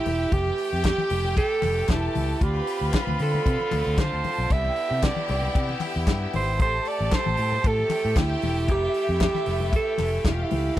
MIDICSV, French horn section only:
0, 0, Header, 1, 2, 480
1, 0, Start_track
1, 0, Tempo, 522648
1, 290, Time_signature, 4, 2, 24, 8
1, 9912, End_track
2, 0, Start_track
2, 0, Title_t, "French horn section"
2, 0, Program_c, 0, 60
2, 0, Note_on_c, 0, 48, 84
2, 0, Note_on_c, 0, 57, 74
2, 0, Note_on_c, 0, 67, 99
2, 272, Note_off_c, 0, 48, 0
2, 288, Note_on_c, 0, 52, 88
2, 2181, Note_off_c, 0, 57, 0
2, 2181, Note_off_c, 0, 67, 0
2, 2195, Note_off_c, 0, 52, 0
2, 2210, Note_on_c, 0, 65, 107
2, 2214, Note_on_c, 0, 50, 99
2, 2214, Note_on_c, 0, 60, 87
2, 4115, Note_off_c, 0, 65, 0
2, 4117, Note_off_c, 0, 60, 0
2, 4137, Note_on_c, 0, 64, 95
2, 4138, Note_on_c, 0, 59, 84
2, 6020, Note_off_c, 0, 50, 0
2, 6038, Note_off_c, 0, 64, 0
2, 6039, Note_off_c, 0, 59, 0
2, 6063, Note_on_c, 0, 57, 88
2, 6065, Note_on_c, 0, 67, 98
2, 6067, Note_on_c, 0, 48, 85
2, 7962, Note_off_c, 0, 48, 0
2, 7976, Note_on_c, 0, 52, 86
2, 9858, Note_off_c, 0, 57, 0
2, 9859, Note_off_c, 0, 67, 0
2, 9873, Note_off_c, 0, 52, 0
2, 9912, End_track
0, 0, End_of_file